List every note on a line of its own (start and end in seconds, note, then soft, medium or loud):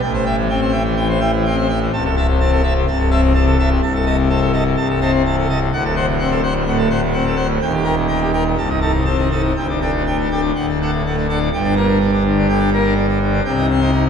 0.01 1.88 A1 medium
0.01 1.88 A2 medium
0.01 0.12 G5 loud
0.14 0.24 C5 medium
0.26 0.36 E5 medium
0.26 0.36 G5 medium
0.36 0.48 E3 medium
0.49 0.71 C4 medium
0.49 0.60 G5 medium
0.62 0.72 C5 medium
0.72 0.83 E5 medium
0.72 0.83 G5 medium
0.83 0.95 E3 medium
0.97 1.18 E3 medium
0.97 1.07 G5 medium
1.09 1.20 C5 medium
1.21 1.31 E5 medium
1.21 1.31 G5 medium
1.34 1.44 E3 medium
1.45 1.67 C4 medium
1.45 1.56 G5 medium
1.57 1.68 C5 medium
1.69 1.79 E5 medium
1.69 1.79 G5 medium
1.81 1.91 E3 medium
1.93 2.85 C1 loud
1.93 2.85 C2 loud
1.93 2.03 A5 loud
2.05 2.15 A4 medium
2.16 2.27 E5 medium
2.16 2.26 A5 medium
2.29 2.39 C3 medium
2.40 2.61 C4 medium
2.40 2.51 A5 medium
2.52 2.62 A4 medium
2.63 2.73 E5 medium
2.63 2.73 A5 medium
2.75 2.86 C3 medium
2.87 3.79 C1 medium
2.87 3.80 C2 medium
2.87 2.98 A5 loud
2.98 3.09 A4 medium
3.10 3.32 C4 medium
3.10 3.21 E5 medium
3.10 3.21 A5 loud
3.23 3.32 C3 medium
3.34 3.56 C3 medium
3.34 3.45 A5 loud
3.46 3.57 A4 medium
3.59 3.69 E5 medium
3.59 3.69 A5 medium
3.71 3.81 C3 medium
3.82 4.75 C1 medium
3.82 4.75 C2 loud
3.82 3.93 A5 loud
3.94 4.05 A4 medium
4.06 4.16 D#5 medium
4.06 4.16 A5 medium
4.18 4.28 C3 medium
4.29 4.51 C4 medium
4.29 4.40 A5 medium
4.41 4.52 A4 medium
4.53 4.63 D#5 medium
4.53 4.63 A5 medium
4.65 4.76 C3 medium
4.77 5.69 C1 loud
4.77 5.69 C2 loud
4.77 4.88 A5 loud
4.89 5.00 A4 medium
5.01 5.22 C4 medium
5.01 5.11 D#5 medium
5.01 5.11 A5 medium
5.14 5.24 C3 medium
5.25 5.46 C3 medium
5.25 5.36 A5 loud
5.38 5.48 A4 medium
5.49 5.59 D#5 medium
5.49 5.59 A5 medium
5.61 5.71 C3 medium
5.73 7.58 D1 medium
5.73 7.58 D2 medium
5.73 5.83 F#5 loud
5.84 5.95 A4 medium
5.96 6.06 C5 medium
5.96 6.06 F#5 medium
6.08 6.18 A2 medium
6.19 6.40 C4 medium
6.19 6.30 F#5 medium
6.31 6.41 A4 medium
6.43 6.53 C5 medium
6.43 6.53 F#5 medium
6.55 6.64 A2 medium
6.66 6.88 A2 medium
6.66 6.77 F#5 medium
6.78 6.89 A4 medium
6.90 7.00 C5 medium
6.90 7.00 F#5 medium
7.02 7.13 A2 medium
7.13 7.35 C4 medium
7.13 7.24 F#5 medium
7.26 7.37 A4 medium
7.36 7.47 C5 medium
7.36 7.47 F#5 medium
7.48 7.59 A2 medium
7.61 8.54 D#1 medium
7.61 8.54 D#2 medium
7.61 7.72 G5 loud
7.72 7.84 G4 medium
7.84 7.95 A#4 medium
7.84 7.95 G5 medium
7.96 8.07 A#2 medium
8.08 8.30 A#3 medium
8.08 8.20 G5 medium
8.20 8.31 G4 medium
8.33 8.44 A#4 medium
8.33 8.43 G5 medium
8.46 8.56 A#2 medium
8.58 9.52 C1 medium
8.58 9.53 C2 medium
8.58 8.68 A5 medium
8.70 8.79 D#4 medium
8.81 9.03 D#4 medium
8.81 8.92 A4 medium
8.81 8.92 A5 medium
8.94 9.05 C3 medium
9.05 9.28 C4 medium
9.05 9.16 A5 medium
9.18 9.29 D#4 medium
9.31 9.52 D#4 medium
9.31 9.42 A4 medium
9.31 9.42 A5 medium
9.44 9.54 C3 medium
9.56 10.51 D1 medium
9.56 10.51 D2 medium
9.56 9.67 G5 medium
9.69 9.79 D4 medium
9.81 10.03 D4 medium
9.81 9.91 A4 medium
9.81 9.91 G5 medium
9.94 10.04 A2 medium
10.06 10.27 A3 medium
10.06 10.17 G5 medium
10.20 10.29 D4 medium
10.31 10.51 D4 medium
10.31 10.41 A4 medium
10.31 10.41 G5 medium
10.43 10.53 A2 medium
10.55 11.49 D1 medium
10.55 11.49 D2 medium
10.55 10.66 F#5 medium
10.69 10.79 D4 medium
10.81 11.02 D4 medium
10.81 10.91 A4 medium
10.81 10.91 F#5 medium
10.93 11.03 A2 medium
11.06 11.26 A3 medium
11.06 11.16 F#5 medium
11.17 11.27 D4 medium
11.29 11.49 D4 medium
11.29 11.38 A4 medium
11.29 11.39 F#5 medium
11.41 11.50 A2 medium
11.53 13.41 G1 medium
11.53 13.40 G2 medium
11.53 11.74 G5 medium
11.64 11.75 D4 medium
11.76 11.86 A#3 medium
11.76 11.97 A#4 medium
11.88 11.98 D4 medium
12.00 12.11 D4 medium
12.13 12.23 D4 medium
12.25 12.46 D3 medium
12.38 12.48 D4 medium
12.49 12.59 D3 medium
12.49 12.70 G5 medium
12.59 12.70 D4 medium
12.73 12.83 A#3 medium
12.73 12.94 A#4 medium
12.85 12.94 D4 medium
12.96 13.06 D4 medium
13.08 13.18 D4 medium
13.21 13.41 D3 medium
13.33 13.43 D4 medium
13.45 14.09 C2 medium
13.45 14.09 C3 medium
13.45 13.66 G5 loud
13.58 13.67 D#4 medium
13.70 13.80 C4 medium
13.70 13.90 C5 medium
13.81 13.90 D#4 medium
13.92 14.04 D#4 medium
14.06 14.09 D#4 medium